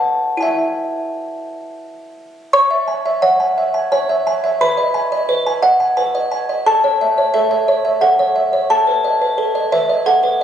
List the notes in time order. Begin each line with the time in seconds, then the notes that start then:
Already playing: B4 D#5 F#5 A5
0.37 E4 G#5
0.42 E5
2.53 C#5 C#6
2.71 E5
2.88 G#5
3.06 E5
3.22 C#5 F#5
3.40 G#5
3.58 E5
3.74 G#5
3.92 C#5 G#5
4.09 E5
4.27 G#5
4.44 E5
4.61 B4 B5
4.77 D#5
4.94 G#5
5.12 D#5
5.29 B4
5.46 G#5
5.62 D#5 F#5
5.80 G#5
5.97 B4 G#5
6.15 D#5
6.32 G#5
6.49 D#5
6.66 A4 A5
6.84 C#5
7.01 E5
7.18 C#5
7.34 A4 E5
7.51 E5
7.68 C#5
7.85 E5
8.01 A4 F#5
8.19 C#5
8.36 E5
8.53 C#5
8.70 A4 A5
8.87 B4
9.04 D#5
9.21 B4
9.38 A4
9.55 D#5
9.72 B4 E5
9.89 D#5
10.06 A4 F#5
10.23 B4